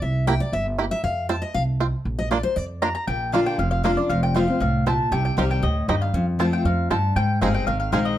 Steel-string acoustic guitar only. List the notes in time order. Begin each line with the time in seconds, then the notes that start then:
0.02 E5
0.27 G5
0.40 D5
0.53 E5
0.91 E5
1.04 F5
1.29 A5
1.42 D#5
1.54 F5
2.19 D#5
2.31 D5
2.43 C5
2.56 D5
3.08 A#2
3.32 D3 A#3 D4 F4
3.59 F2
3.84 D3 A#3 D4 F4
3.97 D4 F4
4.10 F2
4.34 F3 A3 C4 F4
4.48 C4 F4
4.60 A2
4.86 A#2
5.12 C3
5.37 D#3 G3 C4 G4
5.62 A2
5.89 G2
6.14 F2
6.39 F3 A3 C4 F4
6.65 F2
6.91 G2
7.17 G#2
7.41 G#3 C4 D#4 G#4
7.68 D#3
7.92 G#3 C4 D#4 G#4